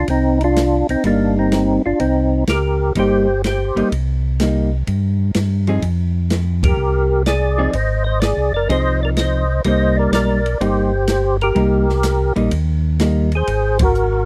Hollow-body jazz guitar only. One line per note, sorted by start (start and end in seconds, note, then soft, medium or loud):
1.05 1.78 G3 medium
1.05 1.78 A#3 medium
1.05 1.79 D#4 medium
2.97 3.25 G3 medium
2.97 3.25 A#3 medium
2.97 3.25 D#4 medium
3.76 3.90 G3 medium
3.76 3.90 A#3 medium
3.76 3.90 D#4 medium
4.40 4.69 G3 medium
4.40 4.69 A#3 medium
4.40 4.69 D#4 medium
5.68 5.81 F3 medium
5.68 5.82 C4 medium
5.68 5.82 D#4 medium
5.68 5.82 G#4 medium
7.58 7.72 F3 medium
7.58 7.72 C4 medium
7.58 7.72 D#4 medium
7.58 7.72 G#4 medium
8.69 9.43 F3 medium
8.69 9.43 C4 medium
8.69 9.43 D#4 medium
8.69 9.43 G#4 medium
9.65 10.39 G3 medium
9.65 10.39 A#3 medium
9.65 10.39 D#4 medium
10.61 10.90 G3 medium
10.61 10.90 A#3 medium
10.61 10.90 D#4 medium
11.55 11.85 G3 medium
11.55 11.85 A#3 medium
11.55 11.85 D#4 medium
12.36 12.50 G3 medium
12.36 12.50 A#3 medium
12.36 12.50 D#4 medium
13.00 13.29 G3 soft
13.00 13.29 A#3 medium
13.00 13.29 D#4 medium